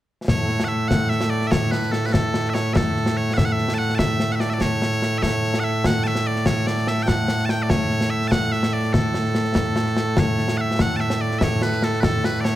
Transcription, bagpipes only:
0.29 12.56 A2 medium
0.29 12.56 A3 medium
0.29 0.64 C#5 medium
0.64 0.88 E5 medium
0.64 0.68 F#5 medium
0.88 1.09 F#5 medium
1.09 1.30 E5 medium
1.30 1.47 D5 medium
1.47 1.51 E5 medium
1.51 1.71 C#5 medium
1.71 1.92 B4 medium
1.92 2.06 A4 medium
2.06 2.13 B4 medium
2.13 2.50 A4 medium
2.50 2.54 E5 medium
2.54 2.73 C#5 medium
2.73 3.17 A4 medium
2.73 2.77 E5 medium
3.17 3.34 C#5 medium
3.34 3.45 E5 medium
3.34 3.37 F#5 medium
3.45 3.52 F#5 medium
3.52 3.74 E5 medium
3.74 3.78 A5 medium
3.78 3.95 F#5 medium
3.95 4.32 E5 loud
3.95 3.99 A5 loud
4.32 4.40 E5 medium
4.32 4.35 F#5 medium
4.40 4.50 D5 medium
4.50 4.61 D5 medium
4.50 4.54 E5 medium
4.61 5.18 C#5 medium
5.18 5.23 E5 medium
5.23 5.60 C#5 medium
5.60 5.64 F#5 medium
5.64 5.86 E5 medium
5.86 6.04 F#5 loud
6.04 6.27 E5 loud
6.04 6.07 A5 loud
6.27 6.46 D5 medium
6.46 6.67 C#5 medium
6.67 6.88 D5 medium
6.88 7.03 E5 medium
7.03 7.08 G5 medium
7.08 7.46 F#5 loud
7.46 7.50 A5 medium
7.50 7.63 G5 medium
7.63 7.69 D5 medium
7.69 8.10 C#5 medium
8.10 8.28 E5 medium
8.28 8.52 F#5 loud
8.28 8.31 A5 loud
8.52 8.73 E5 medium
8.73 8.93 D5 medium
8.93 10.19 A4 medium
10.19 10.57 C#5 medium
10.57 10.81 E5 medium
10.57 10.61 F#5 medium
10.81 10.96 F#5 medium
10.96 11.21 E5 medium
10.96 11.00 A5 medium
11.21 11.39 D5 medium
11.39 11.43 E5 medium
11.43 11.63 C#5 medium
11.63 11.84 B4 medium
11.84 12.01 A4 medium
12.01 12.25 A4 medium
12.01 12.04 B4 medium
12.25 12.41 B4 medium
12.41 12.56 C#5 medium
12.41 12.44 D5 medium

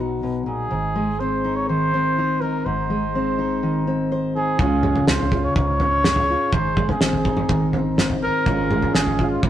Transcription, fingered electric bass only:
0.00 0.68 B1 medium
0.72 2.62 G#1 medium
2.66 4.56 G#1 medium
4.59 4.98 C#2 medium
5.08 5.47 C#2 medium
5.56 6.33 C#2 medium
6.53 6.92 G#1 medium
7.01 7.40 G#1 medium
7.49 8.27 G#1 medium
8.46 8.85 G#1 medium
8.95 9.34 G#1 medium
9.43 9.50 G#1 medium

